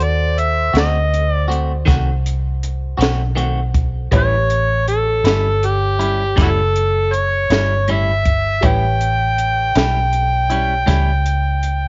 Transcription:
0.00 0.71 D#2 medium
0.00 4.08 F#4 soft
0.00 4.08 A4 soft
0.00 4.09 C5 soft
0.00 0.41 D5 medium
0.00 closed hi-hat soft
0.38 0.76 E5 medium
0.38 closed hi-hat medium
0.73 1.83 D2 medium
0.73 0.97 A3 soft
0.73 0.97 C4 soft
0.73 0.97 F#4 soft
0.73 snare medium
0.73 closed hi-hat medium
0.79 1.32 D#5 medium
1.14 closed hi-hat medium
1.32 1.57 D5 medium
1.48 1.72 A3 soft
1.48 1.72 C4 soft
1.48 1.71 F#4 soft
1.48 closed hi-hat medium
1.86 2.96 C2 medium
1.86 2.09 D#3 medium
1.86 2.09 A3 medium
1.86 2.10 C4 medium
1.86 2.10 F#4 medium
1.86 kick medium
1.86 closed hi-hat medium
1.90 snare soft
2.26 closed hi-hat medium
2.63 closed hi-hat medium
2.98 4.08 B1 medium
2.98 3.22 A3 soft
2.98 3.22 C4 soft
2.98 3.21 F#4 soft
2.98 closed hi-hat medium
3.02 snare loud
3.35 3.59 D#3 medium
3.35 3.59 A3 medium
3.35 3.59 C4 medium
3.35 3.60 F#4 medium
3.35 closed hi-hat medium
3.74 kick medium
3.74 closed hi-hat medium
4.11 5.21 A1 medium
4.11 4.34 A2 medium
4.11 4.35 G3 medium
4.11 4.35 C#4 medium
4.11 4.35 E4 medium
4.11 8.58 G4 soft
4.11 8.58 B4 soft
4.11 8.59 C#5 medium
4.11 kick medium
4.11 closed hi-hat medium
4.17 4.86 C#5 medium
4.50 closed hi-hat medium
4.88 5.67 A4 medium
4.88 closed hi-hat soft
5.24 6.33 G1 medium
5.24 5.48 G3 soft
5.24 5.48 C#4 soft
5.24 5.47 E4 soft
5.24 snare medium
5.24 closed hi-hat medium
5.63 6.39 G4 medium
5.63 closed hi-hat soft
5.99 6.23 G3 soft
5.99 6.22 C#4 soft
5.99 6.22 E4 medium
5.99 closed hi-hat soft
6.36 7.47 F#1 medium
6.36 6.59 A2 medium
6.36 6.60 G3 medium
6.36 6.60 C#4 medium
6.36 6.60 E4 medium
6.36 kick medium
6.36 snare soft
6.36 closed hi-hat medium
6.42 6.49 E4 medium
6.42 6.49 F#4 medium
6.42 7.16 A4 medium
6.76 closed hi-hat medium
7.13 7.88 C#5 medium
7.13 closed hi-hat medium
7.50 8.59 G1 medium
7.50 7.74 G3 soft
7.50 7.73 C#4 soft
7.50 7.73 E4 soft
7.50 snare loud
7.50 closed hi-hat medium
7.88 8.10 A2 soft
7.88 8.11 G3 medium
7.88 8.11 C#4 medium
7.88 8.11 E4 medium
7.88 8.69 E5 medium
7.88 closed hi-hat soft
8.25 kick medium
8.25 closed hi-hat medium
8.61 9.72 A1 medium
8.61 8.85 A2 medium
8.61 8.85 G3 medium
8.61 8.85 C#4 medium
8.61 8.86 E4 medium
8.61 11.88 G4 soft
8.61 11.88 B4 soft
8.61 11.88 C#5 soft
8.61 kick medium
8.61 closed hi-hat medium
8.67 11.88 G5 loud
9.01 closed hi-hat medium
9.38 closed hi-hat medium
9.75 10.85 B1 medium
9.75 9.99 G3 soft
9.75 9.98 C#4 soft
9.75 9.98 E4 soft
9.75 snare medium
9.75 closed hi-hat medium
10.13 closed hi-hat soft
10.50 10.74 G3 soft
10.50 10.73 C#4 medium
10.50 10.73 E4 medium
10.50 closed hi-hat medium
10.86 11.88 C#2 medium
10.86 11.10 A2 medium
10.86 11.10 G3 medium
10.86 11.10 C#4 medium
10.86 11.10 E4 medium
10.86 kick loud
10.86 snare soft
10.86 closed hi-hat medium
11.26 closed hi-hat medium
11.63 closed hi-hat medium

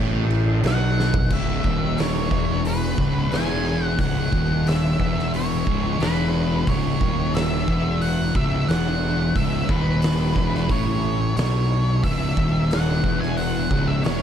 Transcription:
0.00 0.60 A1 medium
0.00 0.63 A2 loud
0.30 crash medium
0.63 1.27 B1 loud
0.63 1.30 B2 loud
0.63 snare loud
0.63 crash medium
0.67 1.33 F#5 medium
1.00 snare medium
1.14 floor tom loud
1.30 1.62 C#1 loud
1.30 1.63 C#2 loud
1.30 2.01 E5 loud
1.30 kick loud
1.30 crash loud
1.64 2.27 D#1 loud
1.64 2.31 D#2 loud
1.64 kick loud
1.98 2.62 C#5 medium
1.98 snare loud
1.98 open hi-hat medium
2.31 2.94 E1 loud
2.31 2.98 E2 medium
2.31 kick loud
2.65 3.35 B4 medium
2.65 open hi-hat medium
2.98 3.30 C#1 loud
2.98 3.31 C#2 loud
2.98 kick loud
3.31 3.95 E1 loud
3.31 3.98 E2 loud
3.31 3.85 G#5 loud
3.31 snare loud
3.31 open hi-hat medium
3.85 4.00 F#5 loud
3.99 4.30 C#1 medium
3.99 4.32 C#2 loud
3.99 4.69 F#5 loud
3.99 kick loud
3.99 open hi-hat medium
4.32 4.96 D#1 medium
4.32 4.99 D#2 loud
4.32 kick loud
4.67 5.30 E5 medium
4.67 snare loud
4.67 open hi-hat medium
4.99 5.63 E1 loud
4.99 5.66 E2 medium
4.99 kick loud
5.19 snare soft
5.34 6.04 C#5 medium
5.34 open hi-hat medium
5.66 5.98 C#1 loud
5.66 5.99 C#2 loud
5.66 kick loud
5.99 6.63 E1 medium
5.99 6.66 E2 loud
5.99 6.70 B4 loud
5.99 snare loud
5.99 open hi-hat soft
6.66 6.99 C#1 loud
6.66 6.99 C#2 loud
6.66 7.35 C#5 medium
6.66 kick loud
6.66 open hi-hat medium
7.00 7.64 D#1 loud
7.00 7.66 D#2 loud
7.00 kick loud
7.34 8.04 E5 medium
7.34 snare loud
7.34 open hi-hat medium
7.66 8.31 E1 medium
7.66 8.33 E2 medium
7.66 kick loud
8.01 8.33 F#5 loud
8.01 open hi-hat medium
8.35 8.66 C#1 loud
8.35 8.68 C#2 loud
8.35 8.70 E5 loud
8.35 kick loud
8.68 9.32 E1 medium
8.68 9.34 E2 loud
8.68 9.38 F#5 medium
8.68 snare loud
8.68 open hi-hat medium
9.35 9.67 C#1 medium
9.35 9.69 C#2 loud
9.35 9.70 E5 medium
9.35 kick loud
9.35 open hi-hat medium
9.69 10.32 D#1 medium
9.69 10.35 D#2 loud
9.69 10.73 B4 medium
9.69 kick loud
10.02 snare loud
10.02 open hi-hat medium
10.36 10.67 E1 loud
10.36 10.69 E2 medium
10.36 kick loud
10.55 snare soft
10.69 11.32 A1 medium
10.69 11.37 A2 loud
10.69 11.35 C#5 medium
10.69 kick loud
10.69 open hi-hat medium
11.37 12.00 B1 medium
11.37 12.02 B2 loud
11.37 12.04 C#5 medium
11.37 snare loud
11.37 open hi-hat medium
12.03 12.35 C#1 medium
12.03 12.36 C#2 loud
12.03 12.73 E5 medium
12.03 kick loud
12.03 open hi-hat medium
12.37 13.00 D#1 medium
12.37 13.03 D#2 loud
12.37 kick loud
12.71 13.18 F#5 medium
12.71 snare loud
12.71 open hi-hat medium
13.03 13.67 E1 loud
13.03 13.70 E2 medium
13.03 kick loud
13.21 13.37 G#5 medium
13.21 snare soft
13.37 13.89 F#5 medium
13.37 open hi-hat medium
13.71 14.02 C#1 loud
13.71 14.03 C#2 medium
13.71 kick loud
13.88 14.04 E5 medium
14.04 14.22 E1 medium
14.04 14.22 E2 loud
14.04 14.22 C#5 medium
14.04 snare loud
14.04 open hi-hat medium

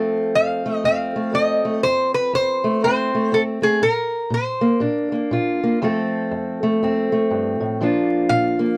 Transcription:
0.00 0.30 F2 medium
0.00 3.36 F3 medium
0.00 0.65 A3 medium
0.00 0.85 C4 medium
0.00 1.32 A4 medium
0.35 0.80 F2 medium
0.35 0.84 F5 medium
0.66 1.14 A3 medium
0.84 1.29 F2 medium
0.84 2.83 C4 medium
0.84 1.34 F5 medium
1.16 1.64 A3 medium
1.33 1.78 F2 medium
1.33 1.80 A4 medium
1.33 1.80 D#5 medium
1.65 1.81 A3 medium
1.83 2.29 F2 medium
1.83 2.11 C5 medium
2.14 2.32 B4 medium
2.33 2.78 F2 medium
2.33 2.83 C5 medium
2.64 3.13 A3 medium
2.84 3.29 F2 medium
2.84 3.32 C4 medium
2.84 3.34 C5 medium
3.15 3.61 A3 medium
3.32 3.78 F2 medium
3.32 3.82 C4 medium
3.32 3.42 A4 medium
3.62 3.79 A3 medium
3.62 3.83 G#4 medium
3.82 4.27 A#2 medium
3.82 4.33 A#4 medium
4.30 4.76 A#2 medium
4.30 4.79 C5 medium
4.61 5.11 A#3 medium
4.80 5.26 A#2 medium
4.80 5.78 D4 medium
5.12 5.61 A#3 medium
5.31 5.77 A#2 medium
5.31 5.84 F4 medium
5.64 5.79 A#3 medium
5.82 6.27 F2 medium
5.82 7.81 F3 medium
5.82 6.61 A3 medium
5.82 6.81 C4 medium
5.82 7.79 A4 medium
6.31 6.77 F2 medium
6.63 7.11 A3 medium
6.83 7.27 F2 medium
6.83 7.81 C4 medium
7.12 7.78 A3 medium
7.31 7.60 G2 medium
7.60 7.80 A2 medium
7.81 8.26 A#2 medium
7.81 8.77 F3 medium
7.81 8.59 A#3 soft
7.81 8.77 D4 medium
7.81 8.77 F4 medium
8.29 8.75 A#2 medium
8.29 8.77 F5 medium
8.59 8.77 A#3 medium

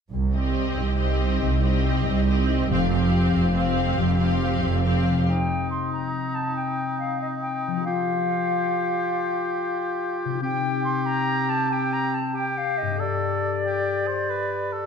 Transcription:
0.12 0.70 C2 soft
0.12 1.41 C3 soft
0.33 1.62 G3 soft
0.33 0.97 C4 soft
0.33 0.97 G4 soft
0.33 0.98 D#5 soft
0.56 1.83 C4 soft
0.77 1.34 C2 soft
0.77 1.19 D#4 soft
0.98 1.62 C4 soft
0.98 1.61 G4 soft
0.98 2.26 G4 soft
0.98 1.62 D#5 soft
1.20 2.05 D#4 soft
1.42 1.98 C2 soft
1.42 2.71 C3 soft
1.63 5.30 G3 soft
1.63 2.26 C4 soft
1.63 2.26 G4 soft
1.63 2.27 D#5 soft
1.84 2.90 C4 soft
2.06 2.62 C2 medium
2.06 2.62 C2 soft
2.06 2.48 D#4 soft
2.27 2.69 C4 soft
2.27 3.32 G4 soft
2.27 2.69 G4 soft
2.27 2.70 D#5 soft
2.49 2.71 D#4 soft
2.69 3.26 F1 medium
2.69 3.26 F2 medium
2.69 3.96 F3 soft
2.69 2.89 C4 soft
2.69 2.91 G4 soft
2.69 2.91 F5 soft
2.90 3.53 C4 soft
2.90 4.18 C4 soft
2.90 3.54 G4 soft
2.90 3.54 F5 soft
3.12 4.40 F4 soft
3.33 3.90 F1 medium
3.33 3.90 F2 medium
3.33 3.75 G4 soft
3.54 4.18 C4 soft
3.54 4.18 G4 soft
3.54 4.83 C5 soft
3.54 4.18 F5 soft
3.76 4.61 G4 soft
3.97 4.55 F1 soft
3.97 4.55 F2 medium
3.97 5.30 F3 soft
4.19 4.83 C4 soft
4.19 5.13 C4 soft
4.19 4.83 G4 soft
4.19 4.83 F5 soft
4.41 5.30 F4 soft
4.63 5.21 F1 soft
4.63 5.21 F2 soft
4.63 5.05 G4 soft
4.85 5.27 C4 soft
4.85 5.28 G4 soft
4.85 8.75 C5 soft
4.85 5.27 F5 soft
5.10 7.79 C3 soft
5.14 7.71 C4 soft
5.19 7.83 D#4 soft
5.23 7.80 G4 soft
5.23 5.68 G5 medium
5.28 7.88 C4 soft
5.28 7.82 D#4 soft
5.70 5.91 C6 soft
5.92 6.36 A#5 soft
6.34 6.55 A5 medium
6.56 6.99 G5 medium
6.99 7.20 F5 soft
7.21 7.27 D#5 medium
7.41 7.83 G5 medium
7.67 10.35 F3 soft
7.72 10.28 C4 soft
7.77 10.40 F4 soft
7.81 10.37 G4 soft
7.81 10.16 F5 medium
7.87 10.41 F4 soft
7.87 10.39 G4 soft
10.25 12.92 C3 soft
10.29 12.94 C4 soft
10.34 12.97 D#4 soft
10.38 12.83 C4 medium
10.38 14.28 G4 soft
10.43 11.67 G4 medium
10.43 10.82 G5 medium
10.84 11.07 C6 medium
11.05 11.50 A#5 medium
11.49 11.74 A5 medium
11.71 12.17 G4 medium
11.71 11.94 G5 medium
11.92 12.15 A#5 medium
12.14 12.36 A5 medium
12.34 13.01 G4 medium
12.34 12.59 G5 medium
12.57 12.79 F5 medium
12.77 12.99 D#5 medium
12.82 14.86 G2 soft
12.87 14.86 B3 soft
12.91 14.86 D4 soft
12.95 14.86 A4 soft
13.00 14.86 G4 soft
13.00 13.60 A4 soft
13.00 14.86 D5 medium
13.65 14.09 G4 soft
14.08 14.31 C5 soft
14.30 14.75 B4 soft
14.73 14.86 A4 soft

